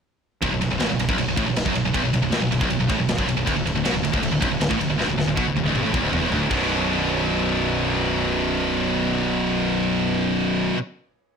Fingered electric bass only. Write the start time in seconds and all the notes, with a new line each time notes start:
0.43 B0
0.52 B0
0.62 B0
0.71 B0
0.80 A1
0.90 B0
0.99 B0
1.08 B0
1.17 B0
1.27 B0
1.37 A1
1.48 B0
1.57 B0
1.66 F#1
1.75 B0
1.84 B0
1.94 B0
2.04 B0
2.13 B0
2.21 B0
2.31 A1
2.42 B0
2.51 B0
2.61 B0
2.70 B0
2.80 B0
2.90 A1
2.99 B0
3.08 B0
3.19 F#1
3.27 B0
3.37 B0
3.48 D1
3.57 D1
3.66 D1
3.74 D1
3.85 B1
3.94 D1
4.04 D1
4.14 D1
4.22 D1
4.32 D1
4.42 B0
4.51 D1
4.60 D1
4.71 A1
4.79 D1
4.89 D1
4.99 D1
5.08 D1
5.17 D1
5.27 D1
5.37 B1
5.46 D1
5.55 D1
5.65 D1
5.74 G1
5.84 A1
5.94 E1
6.03 D1
6.13 E1
6.23 E1
6.31 D1
6.50 B0